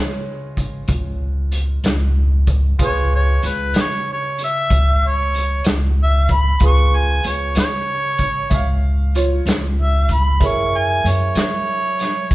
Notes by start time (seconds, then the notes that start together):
Already playing: C#3 F4 G#4 B4 C#5 D#5
0.57 kick, closed hi-hat
0.88 C#2, kick, closed hi-hat
1.52 closed hi-hat
1.84 C#2, snare, closed hi-hat
2.47 kick, closed hi-hat
2.79 C#2 F4 G#4 B4 D#6, kick, closed hi-hat
2.85 C#5
3.15 C#5
3.43 C#2, closed hi-hat
3.48 B4
3.74 C#3, snare, closed hi-hat
3.80 C#5
4.13 C#5
4.38 closed hi-hat
4.44 E5
4.70 C#2, kick, closed hi-hat
5.07 C#5
5.34 closed hi-hat
5.64 C#2, snare, closed hi-hat
6.03 E5
6.28 kick, closed hi-hat
6.33 B5
6.60 C#2 F4 G#4 B4, kick, closed hi-hat
6.65 C#6 D#6
6.96 G#5
7.24 C#2 C#5, closed hi-hat
7.55 C#3, snare, closed hi-hat
7.60 C#5
8.18 kick, closed hi-hat
8.50 C#2 E5, kick, closed hi-hat
8.54 F5
9.15 F4 C#5, closed hi-hat
9.46 C#2, snare, closed hi-hat
9.81 E5
10.09 kick, closed hi-hat
10.14 B5
10.40 F#2 E4 G#4 A#4 C#5, kick, closed hi-hat
10.46 C#6
10.77 G#5
11.04 F#2, closed hi-hat
11.09 C#5
11.35 F#3, snare, closed hi-hat
11.41 C#5
11.99 snare, closed hi-hat
12.31 F#2, kick, closed hi-hat